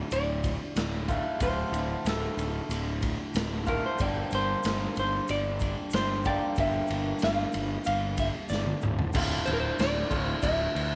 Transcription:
Already playing: D2 A2 D3 A3 F4 D5
0.11 D1 D5, ride, shaker
0.44 kick, ride, shaker
0.76 D1, snare, ride, shaker
1.08 D2 A2 D3 A3 F4, kick, ride, shaker
1.40 D1 D2 A2 D3 A3 F4 C5, kick, ride, shaker
1.72 D1, ride, shaker
2.05 D1, snare, ride, shaker
2.09 A4
2.37 D1, ride, shaker
2.69 D1, ride, shaker
3.02 kick, ride, shaker
3.34 D1, snare, ride, shaker
3.66 D2 A2 D3 A3 F4 A#4, kick, ride, shaker
3.86 C5
3.98 G1 G2 D3 G3 A#3 D4 G4 D5, kick, ride, shaker
4.31 G1 C5, ride, shaker
4.63 G1, snare, ride, shaker
4.96 G1 C5, ride, shaker
5.28 G1 D5, ride, shaker
5.59 kick, ride, shaker
5.90 G1, snare, ride, shaker
5.95 C5
6.24 G3 A#3 D4 G4 D5, kick, ride, shaker
6.28 G2 D3
6.56 G1 G2 D3 G3 A#3 D4, kick, ride, shaker
6.60 G4 E5
6.87 G1, ride, shaker
7.19 G1, ride, shaker
7.23 F5, snare
7.52 G1, ride, shaker
7.70 E5
7.84 G1 F5, ride, shaker
8.17 E5, kick, ride, shaker
8.49 G1 D5, snare, shaker
8.66 high tom
8.81 D1, mid tom, shaker
8.99 floor tom
9.13 D1 D2 A2 D3 A3 F4, kick, crash, shaker
9.46 D1 C5, crash, shaker
9.53 A#4
9.60 C5
9.79 D1 D5, snare, crash, shaker
10.10 D1 D2 A2 D3 A3 F4, kick, crash, shaker
10.25 C5
10.42 D1 E5, kick, crash, shaker
10.75 D2, crash

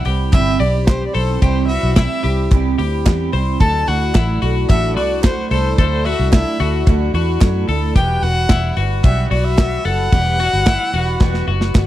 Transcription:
0.05 C2 G3 C4 E4 G4, open hi-hat
0.32 G1 C3 E3 G3 C4 E4 E5, kick, clap, hi-hat pedal, ride
0.59 B1 G3 C4 E4 G4 D5, open hi-hat
0.87 E3 G3 C4 E4 C5, kick, snare, clap, hi-hat pedal, ride
1.07 D5
1.14 B1 C4 E4 A4 C5, open hi-hat
1.18 G3
1.42 C2 C3 E3 G3 C4 E4 G4 C5, kick, hi-hat pedal, ride
1.68 G3 C4 E4 F#4 E5, open hi-hat
1.83 B1
1.96 E3 G3 C4 E4 E5, kick, snare, clap, hi-hat pedal, ride
2.23 C2 G3 C4 E4 G4, open hi-hat
2.51 C2 C3 E3 G3 C4 E4, kick, clap, hi-hat pedal, ride
2.78 D2 G3 C4 E4 G4, open hi-hat
3.05 E2 E3 G3 C4 E4, kick, snare, clap, hi-hat pedal, ride
3.32 C2 G3 C4 E4 C5, open hi-hat
3.60 D2 D3 F#3 A3 D4 E4 A4 A5, kick, hi-hat pedal, ride
3.86 D2 A3 D4 E4 F#4 F#5, open hi-hat
4.15 A1 F#3 A3 D4 E4, kick, snare, clap, hi-hat pedal, ride
4.42 B1 A3 D4 E4 F#4, open hi-hat
4.69 A1 D3 F#3 A3 D4 E4 E5, kick, clap, hi-hat pedal, ride
4.96 C2 A3 D4 E4 F#4 D5, open hi-hat
5.23 F#3 A3 D4 E4 C5, kick, snare, clap, hi-hat pedal, ride
5.51 C2 A3 D4 E4 A4 C5, open hi-hat
5.78 D2 D3 F#3 A3 D4 E4 A4 C5, kick, hi-hat pedal, ride
6.05 A3 D4 E4 F#4 E5, open hi-hat
6.20 C2
6.32 F#3 A3 D4 E4 E5, kick, snare, clap, hi-hat pedal, ride
6.60 D2 A3 D4 E4 F#4, open hi-hat
6.87 D2 D3 F#3 A3 D4 E4, kick, clap, hi-hat pedal, ride
7.14 E2 A3 D4 E4 F#4, open hi-hat
7.41 F#2 F#3 A3 D4 E4, kick, snare, clap, hi-hat pedal, ride
7.68 D2 A3 D4 E4 A4, open hi-hat
7.96 E1 E2 B2 E3 G3 B3 F#4 G4 G5, kick, hi-hat pedal, ride
8.22 E1 E3 G3 B3 F#4 F#5, open hi-hat
8.49 E1 E3 G3 B3 E4 F#4, kick, snare, clap, hi-hat pedal, ride
8.77 G1 E3 G3 B3 F#4, open hi-hat
9.04 B1 E2 B2 E3 G3 B3 F#4 E5, kick, clap, hi-hat pedal, ride
9.31 B1 E3 G3 B3 F#4 D5, open hi-hat
9.45 E5
9.58 E3 G3 B3 F#4, kick, snare, clap, hi-hat pedal, ride
9.85 F#1 E3 G3 B3 F#4 A4 F#5, open hi-hat
10.12 E1 E2 B2 E3 G3 B3 F#4 G4, kick, hi-hat pedal, ride
10.39 E3 G3 B3 F#4, open hi-hat
10.53 G1
10.66 E3 G3 B3 E4 F#4, kick, snare, clap, hi-hat pedal, ride
10.93 E1 E3 G3 B3 F#4, open hi-hat
11.20 E1 E2 B2 E3 G3 B3 F#4, kick, snare, clap
11.34 snare
11.47 F#1 E3 G3 B3 F#4
11.61 snare
11.75 G1 E3 G3 B3 F#4, kick, snare, clap

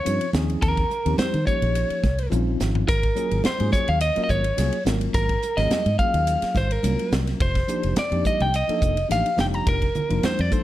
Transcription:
Already playing: C#5
0.05 G2 F3 C4 C#4 D#4 F4, hi-hat pedal, ride
0.21 ride
0.33 D#2 F3 C4 C#4 D#4 G#4, snare, hi-hat pedal, high conga
0.50 ride
0.62 D#2 A#4, kick, hi-hat pedal, ride, muted conga
0.77 kick, ride
0.90 hi-hat pedal, muted conga
1.05 D#2 F3 C4 C#4 D#4 G4, ride
1.18 C5, muted fingered electric bass stroke, snare, hi-hat pedal, ride, muted conga, high conga
1.34 D#3, ride
1.46 F3 A#3 C#4 D#4 G4 C#5, kick, hi-hat pedal
1.62 A#1, ride
1.75 hi-hat pedal, ride
1.90 ride
2.03 C2, kick, snare, hi-hat pedal, muted conga, high conga, low conga
2.18 ride
2.30 A#1 F3 C4 C#4 D#4 F4, hi-hat pedal, high tom, high conga
2.60 G#1, snare, hi-hat pedal
2.75 floor tom
2.88 G#1 A#4, kick, hi-hat pedal, ride, muted conga
3.03 kick, ride
3.15 F#3 A#3 C#4 F4 G#4, hi-hat pedal, muted conga
3.31 G#1, ride
3.44 C5, snare, hi-hat pedal, ride, muted conga, high conga
3.59 G#2 F#3 A#3 C#4 F4 G#4, ride
3.72 C#5, kick, hi-hat pedal, high conga
3.88 D#2 F5, ride
4.01 D#5, hi-hat pedal, ride
4.16 F#3 A#3 C#4 F4 A#4, muted fingered electric bass stroke, ride
4.24 D#5
4.29 G#1 C#5, kick, hi-hat pedal, muted conga
4.44 ride
4.57 C2 F#3 A#3 C#4 F4 G#4, snare, hi-hat pedal, ride
4.72 ride
4.85 G#1 F#3 A#3 C#4 F4 A#4, snare, hi-hat pedal, high conga
5.01 ride
5.14 G#1 A#4, kick, hi-hat pedal, ride, muted conga
5.29 kick, ride
5.42 hi-hat pedal, muted conga
5.57 G#1 F#3 A#3 C#4 F4 G#4 D#5, snare, ride
5.71 snare, hi-hat pedal, ride, muted conga, high conga
5.86 G#2, ride
5.99 F#3 A#3 C#4 F4 G#4 F5, kick, hi-hat pedal
6.14 D#2, ride
6.27 hi-hat pedal, ride
6.42 muted fingered electric bass stroke, snare, ride
6.55 G#1 C5, kick, snare, hi-hat pedal, high conga, low conga
6.71 A#4, ride
6.83 C2 F#3 A#3 C#4 F4 A#4, hi-hat pedal, ride, high conga
6.99 ride
7.12 C2, snare, hi-hat pedal
7.27 snare, ride
7.40 F1 C5, kick, hi-hat pedal, ride, muted conga
7.55 kick, snare, ride
7.68 F3 A#3 D4 D#4 G4, hi-hat pedal, muted conga
7.83 F1, ride
7.96 D5, muted fingered electric bass stroke, snare, hi-hat pedal, ride, muted conga, high conga
8.11 F2 F3 A#3 D4 D#4 G4, ride
8.25 D#5, kick, hi-hat pedal, high conga
8.40 C2 G5, ride
8.54 D#5, hi-hat pedal, ride
8.68 F3 A#3 D4 D#4 A4, muted fingered electric bass stroke, ride
8.82 F1, kick, hi-hat pedal, muted conga
8.97 ride
9.09 A1 F3 A#3 D4 D#4 G4 F5, snare, hi-hat pedal, ride
9.26 ride
9.37 F1 F3 A#3 D4 D#4 G4 G5, snare, hi-hat pedal, high conga
9.54 A#5, ride
9.67 F1 A#4, kick, hi-hat pedal, ride, muted conga
9.82 kick, ride
9.95 hi-hat pedal, muted conga, low conga
10.09 F1 F3 A#3 D4 D#4 F4, ride
10.23 C5, snare, hi-hat pedal, ride, muted conga, high conga
10.39 F2 D5, ride
10.50 F3 A#3 D4 D#4 A4 C5, kick, hi-hat pedal

